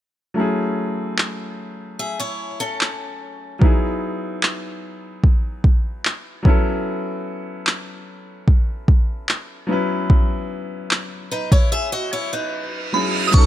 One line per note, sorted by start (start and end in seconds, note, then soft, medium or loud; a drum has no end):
0.34 3.56 F#3 medium
0.34 3.57 A3 medium
0.34 3.57 C#4 medium
0.39 3.58 E4 medium
0.39 3.59 G#4 medium
1.18 clap loud
1.99 2.19 G#4 medium
1.99 2.18 E5 medium
2.20 2.58 E4 medium
2.20 2.58 C#5 medium
2.60 3.58 C#4 medium
2.60 3.57 A4 medium
2.81 clap medium
3.59 6.40 F#3 medium
3.59 6.41 B3 medium
3.59 6.41 D#4 medium
3.59 kick loud
3.63 6.42 E4 medium
3.63 6.43 G#4 medium
4.43 clap loud
5.24 kick medium
5.64 kick medium
6.05 clap loud
6.43 9.64 F#3 medium
6.43 9.65 B3 medium
6.43 9.66 C#4 medium
6.43 kick loud
6.47 9.66 E4 medium
6.47 9.67 A4 medium
7.67 clap loud
8.48 kick medium
8.88 kick medium
9.29 clap loud
9.67 12.88 F#3 medium
9.67 12.89 B3 medium
9.67 12.90 C#4 medium
9.71 12.91 E4 medium
9.71 12.91 B4 medium
10.10 kick loud
10.91 clap loud
11.31 11.51 D#4 medium
11.31 11.51 B4 medium
11.52 11.71 E4 medium
11.52 11.71 C#5 medium
11.52 kick medium
11.72 11.92 G#4 medium
11.72 11.91 E5 medium
11.72 reverse cymbal medium
11.92 12.12 F#4 medium
11.92 12.11 D#5 medium
12.13 12.32 E4 medium
12.13 12.32 C#5 medium
12.33 13.30 D#4 medium
12.33 13.30 B4 medium
12.92 13.30 F#3 soft
12.92 13.31 B3 soft
12.92 13.33 C#4 soft
12.92 13.35 E4 soft
12.92 13.35 G#4 medium
12.92 13.08 B5 medium
13.27 13.46 F#3 medium
13.27 13.34 D#6 medium
13.33 13.46 B1 loud
13.33 13.46 B3 medium
13.33 13.46 C#4 medium
13.33 13.46 D#4 medium
13.33 13.46 C#6 medium
13.33 kick loud
13.33 closed hi-hat medium
13.33 crash loud
13.37 13.46 A4 medium